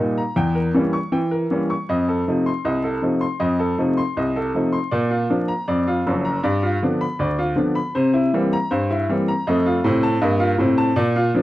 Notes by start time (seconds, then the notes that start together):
0.00 A#2 G3 A#3 D#4
0.18 A#5
0.36 E2 G5
0.55 A#4
0.74 E3 G3 A#3 C#4
0.93 C#6
1.12 E3 G5
1.31 A#4
1.51 E3 G3 A#3 C#4
1.70 C#6
1.89 F2 D#5
2.08 A4
2.28 C3 F3 A3 D#4
2.46 C6
2.65 C2 D#5
2.83 A4
3.02 C3 F3 A3 D#4
3.21 C6
3.40 F2 D#5
3.59 A4
3.78 C3 F3 A3 D#4
3.97 C6
4.17 C2 D#5
4.36 A4
4.55 C3 F3 A3 D#4
4.72 C6
4.91 A#2 D5
5.11 F4
5.30 F3 A#3 D4
5.48 A#5
5.68 F2 D5
5.87 F4
6.06 F#1 F#2 F3
6.25 A#5
6.43 G2 D5
6.63 F4
6.82 D3 F3 B3 D4
7.01 B5
7.19 D2 D5
7.39 F4
7.56 D3 F3 B3 D4
7.75 B5
7.95 C3 C5
8.14 E4
8.34 E3 G3 A#3 C4
8.53 A#5
8.71 G2 C5
8.91 E4
9.09 E3 G3 A#3 C4
9.28 A#5
9.47 F2 A3 D#5
9.66 F4
9.84 A2 C3 C4
10.03 A5
10.21 G2 A#3 D#5
10.40 F4
10.58 A2 C3 C4
10.78 A5
10.96 A#2 D5
11.16 F4
11.34 F3 A#3 D4